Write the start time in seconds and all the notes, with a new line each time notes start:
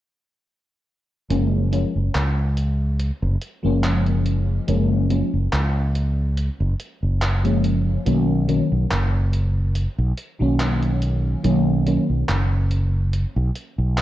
1.30 F#1 F3 G#3 A#3 C#4, closed hi-hat
1.71 F3 G#3 A#3 C#4, closed hi-hat
1.95 F#1
2.15 C#2, clap, closed hi-hat
2.57 closed hi-hat
2.99 closed hi-hat
3.22 F#1
3.42 closed hi-hat
3.63 F#1 F3 G#3 A#3 C#4
3.84 clap, closed hi-hat
4.07 closed hi-hat
4.26 closed hi-hat
4.68 F#1 F3 G#3 A#3 C#4, closed hi-hat
5.10 F3 G#3 A#3 C#4, closed hi-hat
5.34 F#1
5.53 C#2, clap, closed hi-hat
5.95 closed hi-hat
6.37 closed hi-hat
6.60 F#1
6.80 closed hi-hat
7.03 F#1
7.22 clap, closed hi-hat
7.44 F3 G#3 A#3 C#4, closed hi-hat
7.64 closed hi-hat
8.06 B1 D#3 F#3 A#3 C#4, closed hi-hat
8.48 D#3 F#3 A#3 C#4, closed hi-hat
8.72 B1
8.91 F#1, clap, closed hi-hat
9.33 closed hi-hat
9.75 closed hi-hat
9.98 B1
10.17 closed hi-hat
10.39 B1 D#3 F#3 A#3 C#4
10.60 clap, closed hi-hat
10.83 closed hi-hat
11.02 closed hi-hat
11.43 B1 D#3 F#3 A#3 C#4, closed hi-hat
11.86 D#3 F#3 A#3 C#4, closed hi-hat
12.10 B1
12.29 F#1, clap, closed hi-hat
12.71 closed hi-hat
13.13 closed hi-hat
13.36 B1
13.56 closed hi-hat
13.78 B1
13.98 clap, closed hi-hat